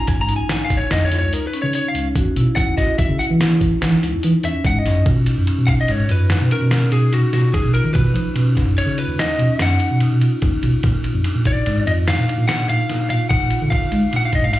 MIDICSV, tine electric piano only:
0, 0, Header, 1, 2, 480
1, 0, Start_track
1, 0, Tempo, 415225
1, 2492, Time_signature, 7, 2, 24, 8
1, 7283, Tempo, 411805
1, 16951, End_track
2, 0, Start_track
2, 0, Title_t, "Tine electric piano"
2, 0, Program_c, 0, 4
2, 216, Note_on_c, 0, 44, 77
2, 393, Note_off_c, 0, 44, 0
2, 444, Note_on_c, 0, 34, 90
2, 626, Note_off_c, 0, 34, 0
2, 1050, Note_on_c, 0, 41, 87
2, 1410, Note_off_c, 0, 41, 0
2, 1416, Note_on_c, 0, 37, 81
2, 1595, Note_off_c, 0, 37, 0
2, 1889, Note_on_c, 0, 49, 83
2, 2071, Note_off_c, 0, 49, 0
2, 2252, Note_on_c, 0, 37, 87
2, 2433, Note_off_c, 0, 37, 0
2, 2491, Note_on_c, 0, 40, 95
2, 2672, Note_off_c, 0, 40, 0
2, 2732, Note_on_c, 0, 47, 95
2, 2823, Note_off_c, 0, 47, 0
2, 2977, Note_on_c, 0, 40, 91
2, 3156, Note_off_c, 0, 40, 0
2, 3575, Note_on_c, 0, 49, 88
2, 3665, Note_off_c, 0, 49, 0
2, 3820, Note_on_c, 0, 52, 85
2, 4269, Note_off_c, 0, 52, 0
2, 4417, Note_on_c, 0, 52, 97
2, 4596, Note_off_c, 0, 52, 0
2, 4669, Note_on_c, 0, 37, 88
2, 4753, Note_off_c, 0, 37, 0
2, 4789, Note_on_c, 0, 40, 87
2, 4873, Note_off_c, 0, 40, 0
2, 4907, Note_on_c, 0, 52, 93
2, 4992, Note_off_c, 0, 52, 0
2, 5132, Note_on_c, 0, 40, 87
2, 5312, Note_off_c, 0, 40, 0
2, 5365, Note_on_c, 0, 44, 105
2, 5547, Note_off_c, 0, 44, 0
2, 5618, Note_on_c, 0, 42, 93
2, 5795, Note_off_c, 0, 42, 0
2, 5849, Note_on_c, 0, 47, 94
2, 6119, Note_off_c, 0, 47, 0
2, 6212, Note_on_c, 0, 42, 95
2, 6301, Note_off_c, 0, 42, 0
2, 6459, Note_on_c, 0, 47, 86
2, 6725, Note_off_c, 0, 47, 0
2, 6813, Note_on_c, 0, 44, 98
2, 6990, Note_off_c, 0, 44, 0
2, 7047, Note_on_c, 0, 42, 91
2, 7317, Note_off_c, 0, 42, 0
2, 7411, Note_on_c, 0, 47, 87
2, 7499, Note_off_c, 0, 47, 0
2, 7647, Note_on_c, 0, 47, 95
2, 7918, Note_off_c, 0, 47, 0
2, 8008, Note_on_c, 0, 47, 85
2, 8189, Note_off_c, 0, 47, 0
2, 8259, Note_on_c, 0, 47, 85
2, 8345, Note_off_c, 0, 47, 0
2, 8487, Note_on_c, 0, 47, 90
2, 8668, Note_off_c, 0, 47, 0
2, 8847, Note_on_c, 0, 47, 83
2, 9029, Note_off_c, 0, 47, 0
2, 9081, Note_on_c, 0, 51, 88
2, 9174, Note_off_c, 0, 51, 0
2, 9207, Note_on_c, 0, 47, 105
2, 9389, Note_off_c, 0, 47, 0
2, 9430, Note_on_c, 0, 53, 83
2, 9528, Note_off_c, 0, 53, 0
2, 9676, Note_on_c, 0, 47, 91
2, 9952, Note_off_c, 0, 47, 0
2, 10030, Note_on_c, 0, 42, 84
2, 10128, Note_off_c, 0, 42, 0
2, 10271, Note_on_c, 0, 49, 86
2, 10459, Note_off_c, 0, 49, 0
2, 10511, Note_on_c, 0, 39, 83
2, 10699, Note_off_c, 0, 39, 0
2, 10875, Note_on_c, 0, 47, 88
2, 10971, Note_off_c, 0, 47, 0
2, 11127, Note_on_c, 0, 42, 90
2, 11309, Note_off_c, 0, 42, 0
2, 11490, Note_on_c, 0, 47, 80
2, 11671, Note_off_c, 0, 47, 0
2, 11733, Note_on_c, 0, 47, 81
2, 11913, Note_off_c, 0, 47, 0
2, 12094, Note_on_c, 0, 39, 94
2, 12273, Note_off_c, 0, 39, 0
2, 12329, Note_on_c, 0, 47, 87
2, 12420, Note_off_c, 0, 47, 0
2, 12572, Note_on_c, 0, 46, 100
2, 12842, Note_off_c, 0, 46, 0
2, 12922, Note_on_c, 0, 41, 94
2, 13015, Note_off_c, 0, 41, 0
2, 13173, Note_on_c, 0, 46, 90
2, 13442, Note_off_c, 0, 46, 0
2, 13540, Note_on_c, 0, 44, 103
2, 13716, Note_off_c, 0, 44, 0
2, 13767, Note_on_c, 0, 41, 100
2, 14038, Note_off_c, 0, 41, 0
2, 14143, Note_on_c, 0, 46, 93
2, 14227, Note_off_c, 0, 46, 0
2, 14372, Note_on_c, 0, 46, 93
2, 14640, Note_off_c, 0, 46, 0
2, 14739, Note_on_c, 0, 46, 88
2, 14914, Note_off_c, 0, 46, 0
2, 14981, Note_on_c, 0, 46, 88
2, 15065, Note_off_c, 0, 46, 0
2, 15214, Note_on_c, 0, 46, 93
2, 15391, Note_off_c, 0, 46, 0
2, 15575, Note_on_c, 0, 46, 87
2, 15751, Note_off_c, 0, 46, 0
2, 15815, Note_on_c, 0, 50, 89
2, 16081, Note_off_c, 0, 50, 0
2, 16165, Note_on_c, 0, 56, 81
2, 16254, Note_off_c, 0, 56, 0
2, 16407, Note_on_c, 0, 46, 88
2, 16676, Note_off_c, 0, 46, 0
2, 16757, Note_on_c, 0, 44, 86
2, 16849, Note_off_c, 0, 44, 0
2, 16951, End_track
0, 0, End_of_file